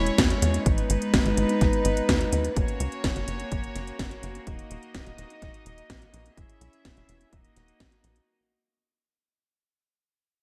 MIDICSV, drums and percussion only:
0, 0, Header, 1, 2, 480
1, 0, Start_track
1, 0, Tempo, 476190
1, 664, Time_signature, 4, 2, 24, 8
1, 10503, End_track
2, 0, Start_track
2, 0, Title_t, "Drums"
2, 65, Note_on_c, 9, 42, 37
2, 166, Note_off_c, 9, 42, 0
2, 185, Note_on_c, 9, 36, 109
2, 185, Note_on_c, 9, 38, 121
2, 185, Note_on_c, 9, 42, 64
2, 286, Note_off_c, 9, 36, 0
2, 286, Note_off_c, 9, 38, 0
2, 286, Note_off_c, 9, 42, 0
2, 306, Note_on_c, 9, 42, 37
2, 407, Note_off_c, 9, 42, 0
2, 427, Note_on_c, 9, 42, 86
2, 527, Note_off_c, 9, 42, 0
2, 546, Note_on_c, 9, 42, 36
2, 647, Note_off_c, 9, 42, 0
2, 665, Note_on_c, 9, 36, 114
2, 666, Note_on_c, 9, 42, 58
2, 766, Note_off_c, 9, 36, 0
2, 767, Note_off_c, 9, 42, 0
2, 785, Note_on_c, 9, 42, 36
2, 886, Note_off_c, 9, 42, 0
2, 905, Note_on_c, 9, 42, 82
2, 1006, Note_off_c, 9, 42, 0
2, 1026, Note_on_c, 9, 42, 35
2, 1127, Note_off_c, 9, 42, 0
2, 1145, Note_on_c, 9, 36, 114
2, 1146, Note_on_c, 9, 38, 107
2, 1146, Note_on_c, 9, 42, 58
2, 1246, Note_off_c, 9, 36, 0
2, 1247, Note_off_c, 9, 38, 0
2, 1247, Note_off_c, 9, 42, 0
2, 1266, Note_on_c, 9, 42, 36
2, 1367, Note_off_c, 9, 42, 0
2, 1386, Note_on_c, 9, 42, 86
2, 1487, Note_off_c, 9, 42, 0
2, 1505, Note_on_c, 9, 42, 36
2, 1605, Note_off_c, 9, 42, 0
2, 1625, Note_on_c, 9, 38, 34
2, 1625, Note_on_c, 9, 42, 57
2, 1626, Note_on_c, 9, 36, 114
2, 1726, Note_off_c, 9, 36, 0
2, 1726, Note_off_c, 9, 38, 0
2, 1726, Note_off_c, 9, 42, 0
2, 1745, Note_on_c, 9, 42, 35
2, 1846, Note_off_c, 9, 42, 0
2, 1864, Note_on_c, 9, 42, 84
2, 1964, Note_off_c, 9, 42, 0
2, 1985, Note_on_c, 9, 42, 37
2, 2086, Note_off_c, 9, 42, 0
2, 2105, Note_on_c, 9, 36, 107
2, 2106, Note_on_c, 9, 38, 113
2, 2106, Note_on_c, 9, 42, 61
2, 2206, Note_off_c, 9, 36, 0
2, 2206, Note_off_c, 9, 38, 0
2, 2206, Note_off_c, 9, 42, 0
2, 2224, Note_on_c, 9, 42, 36
2, 2325, Note_off_c, 9, 42, 0
2, 2344, Note_on_c, 9, 42, 82
2, 2445, Note_off_c, 9, 42, 0
2, 2465, Note_on_c, 9, 42, 36
2, 2565, Note_off_c, 9, 42, 0
2, 2585, Note_on_c, 9, 36, 109
2, 2585, Note_on_c, 9, 42, 56
2, 2686, Note_off_c, 9, 36, 0
2, 2686, Note_off_c, 9, 42, 0
2, 2704, Note_on_c, 9, 42, 37
2, 2805, Note_off_c, 9, 42, 0
2, 2825, Note_on_c, 9, 42, 79
2, 2926, Note_off_c, 9, 42, 0
2, 2944, Note_on_c, 9, 42, 33
2, 3045, Note_off_c, 9, 42, 0
2, 3064, Note_on_c, 9, 38, 109
2, 3064, Note_on_c, 9, 42, 58
2, 3066, Note_on_c, 9, 36, 110
2, 3165, Note_off_c, 9, 38, 0
2, 3165, Note_off_c, 9, 42, 0
2, 3166, Note_off_c, 9, 36, 0
2, 3184, Note_on_c, 9, 42, 35
2, 3285, Note_off_c, 9, 42, 0
2, 3304, Note_on_c, 9, 42, 81
2, 3404, Note_off_c, 9, 42, 0
2, 3423, Note_on_c, 9, 42, 35
2, 3524, Note_off_c, 9, 42, 0
2, 3544, Note_on_c, 9, 42, 58
2, 3545, Note_on_c, 9, 36, 108
2, 3645, Note_off_c, 9, 42, 0
2, 3646, Note_off_c, 9, 36, 0
2, 3665, Note_on_c, 9, 42, 36
2, 3766, Note_off_c, 9, 42, 0
2, 3786, Note_on_c, 9, 38, 34
2, 3786, Note_on_c, 9, 42, 87
2, 3887, Note_off_c, 9, 38, 0
2, 3887, Note_off_c, 9, 42, 0
2, 3905, Note_on_c, 9, 42, 37
2, 4006, Note_off_c, 9, 42, 0
2, 4025, Note_on_c, 9, 36, 106
2, 4026, Note_on_c, 9, 38, 108
2, 4026, Note_on_c, 9, 42, 61
2, 4126, Note_off_c, 9, 36, 0
2, 4127, Note_off_c, 9, 38, 0
2, 4127, Note_off_c, 9, 42, 0
2, 4145, Note_on_c, 9, 42, 35
2, 4245, Note_off_c, 9, 42, 0
2, 4265, Note_on_c, 9, 42, 80
2, 4366, Note_off_c, 9, 42, 0
2, 4386, Note_on_c, 9, 42, 35
2, 4487, Note_off_c, 9, 42, 0
2, 4504, Note_on_c, 9, 42, 57
2, 4505, Note_on_c, 9, 36, 104
2, 4605, Note_off_c, 9, 42, 0
2, 4606, Note_off_c, 9, 36, 0
2, 4626, Note_on_c, 9, 42, 36
2, 4726, Note_off_c, 9, 42, 0
2, 4745, Note_on_c, 9, 42, 80
2, 4846, Note_off_c, 9, 42, 0
2, 4865, Note_on_c, 9, 42, 35
2, 4966, Note_off_c, 9, 42, 0
2, 4985, Note_on_c, 9, 36, 105
2, 4985, Note_on_c, 9, 38, 102
2, 4985, Note_on_c, 9, 42, 61
2, 5086, Note_off_c, 9, 36, 0
2, 5086, Note_off_c, 9, 38, 0
2, 5086, Note_off_c, 9, 42, 0
2, 5106, Note_on_c, 9, 42, 37
2, 5207, Note_off_c, 9, 42, 0
2, 5225, Note_on_c, 9, 42, 85
2, 5326, Note_off_c, 9, 42, 0
2, 5345, Note_on_c, 9, 42, 38
2, 5446, Note_off_c, 9, 42, 0
2, 5464, Note_on_c, 9, 38, 31
2, 5464, Note_on_c, 9, 42, 57
2, 5465, Note_on_c, 9, 36, 104
2, 5565, Note_off_c, 9, 38, 0
2, 5565, Note_off_c, 9, 42, 0
2, 5566, Note_off_c, 9, 36, 0
2, 5586, Note_on_c, 9, 42, 36
2, 5686, Note_off_c, 9, 42, 0
2, 5706, Note_on_c, 9, 42, 87
2, 5807, Note_off_c, 9, 42, 0
2, 5826, Note_on_c, 9, 42, 37
2, 5926, Note_off_c, 9, 42, 0
2, 5945, Note_on_c, 9, 36, 102
2, 5946, Note_on_c, 9, 38, 104
2, 5946, Note_on_c, 9, 42, 62
2, 6046, Note_off_c, 9, 36, 0
2, 6047, Note_off_c, 9, 38, 0
2, 6047, Note_off_c, 9, 42, 0
2, 6067, Note_on_c, 9, 42, 36
2, 6168, Note_off_c, 9, 42, 0
2, 6186, Note_on_c, 9, 42, 84
2, 6286, Note_off_c, 9, 42, 0
2, 6307, Note_on_c, 9, 42, 36
2, 6408, Note_off_c, 9, 42, 0
2, 6425, Note_on_c, 9, 36, 107
2, 6427, Note_on_c, 9, 42, 58
2, 6526, Note_off_c, 9, 36, 0
2, 6527, Note_off_c, 9, 42, 0
2, 6547, Note_on_c, 9, 42, 38
2, 6648, Note_off_c, 9, 42, 0
2, 6666, Note_on_c, 9, 42, 84
2, 6767, Note_off_c, 9, 42, 0
2, 6785, Note_on_c, 9, 42, 35
2, 6886, Note_off_c, 9, 42, 0
2, 6905, Note_on_c, 9, 36, 104
2, 6905, Note_on_c, 9, 38, 105
2, 6905, Note_on_c, 9, 42, 61
2, 7006, Note_off_c, 9, 36, 0
2, 7006, Note_off_c, 9, 38, 0
2, 7006, Note_off_c, 9, 42, 0
2, 7026, Note_on_c, 9, 42, 37
2, 7127, Note_off_c, 9, 42, 0
2, 7145, Note_on_c, 9, 42, 90
2, 7246, Note_off_c, 9, 42, 0
2, 7265, Note_on_c, 9, 42, 38
2, 7366, Note_off_c, 9, 42, 0
2, 7385, Note_on_c, 9, 36, 104
2, 7385, Note_on_c, 9, 42, 61
2, 7486, Note_off_c, 9, 36, 0
2, 7486, Note_off_c, 9, 42, 0
2, 7505, Note_on_c, 9, 42, 38
2, 7605, Note_off_c, 9, 42, 0
2, 7625, Note_on_c, 9, 38, 34
2, 7625, Note_on_c, 9, 42, 89
2, 7726, Note_off_c, 9, 38, 0
2, 7726, Note_off_c, 9, 42, 0
2, 7745, Note_on_c, 9, 42, 38
2, 7845, Note_off_c, 9, 42, 0
2, 7865, Note_on_c, 9, 36, 104
2, 7865, Note_on_c, 9, 38, 110
2, 7865, Note_on_c, 9, 42, 63
2, 7966, Note_off_c, 9, 36, 0
2, 7966, Note_off_c, 9, 38, 0
2, 7966, Note_off_c, 9, 42, 0
2, 7984, Note_on_c, 9, 42, 37
2, 8084, Note_off_c, 9, 42, 0
2, 8104, Note_on_c, 9, 42, 85
2, 8205, Note_off_c, 9, 42, 0
2, 8224, Note_on_c, 9, 42, 36
2, 8324, Note_off_c, 9, 42, 0
2, 10503, End_track
0, 0, End_of_file